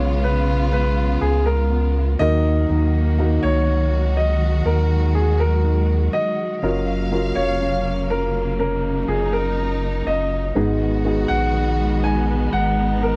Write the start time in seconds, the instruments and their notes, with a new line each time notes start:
Already playing: sub bass B1, upright piano C#3 B3 C#4 F4 G#4, string section C#3 G#3 B3 F4, nylon-string guitar C#3 B3 F4, grand piano C#5
0.23 nylon-string guitar F4, grand piano B4
0.72 nylon-string guitar B3, grand piano B4
1.21 sub bass C#2, nylon-string guitar F4, grand piano G#4
1.46 grand piano A#4
1.70 nylon-string guitar B3
2.19 sub bass D#2, nylon-string guitar D#3, upright piano D#3 A#3 D#4 F#4 A#4, string section D#3 F#3 A#3 F#4, grand piano D#5
2.69 sub bass D#2, nylon-string guitar D#3
3.18 upright piano A#3 D#4 F#4 A#4, nylon-string guitar F#4
3.43 sub bass C#2, grand piano C#5
3.68 nylon-string guitar D#4
4.17 string section G#3, nylon-string guitar F#4, grand piano D#5
4.65 sub bass D#2, nylon-string guitar D#4, grand piano A#4
5.15 nylon-string guitar F#4, grand piano G#4
5.40 grand piano A#4
5.64 nylon-string guitar D#4
6.13 nylon-string guitar F#4, grand piano D#5
6.63 sub bass F#1, string section C#3 A#3 F5, nylon-string guitar F#3, upright piano C#4 F4 F#4 A#4
7.11 upright piano C#4 F4 F#4 A#4, nylon-string guitar F4
7.35 sub bass F1, grand piano C#5
7.61 nylon-string guitar C#4
8.10 nylon-string guitar F4, grand piano A#4
8.59 nylon-string guitar C#4, string section D#4, grand piano A#4
9.08 sub bass F#1, nylon-string guitar F4, grand piano G#4
9.33 grand piano A#4
9.58 nylon-string guitar C#4
10.07 sub bass F#1, nylon-string guitar F4, grand piano D#5
10.55 sub bass G#1, upright piano G#2 B3 D#4 F#4 G#4, nylon-string guitar G#2, string section D#3 G#3 B3 F#4
11.05 upright piano B3 D#4 F#4 G#4, nylon-string guitar D#4
11.28 sub bass A#1, grand piano F#5
11.54 nylon-string guitar B3
12.03 nylon-string guitar D#4, grand piano G#5
12.52 sub bass G#1, nylon-string guitar B3, string section D#4, grand piano F#5
13.02 nylon-string guitar D#4, grand piano A#4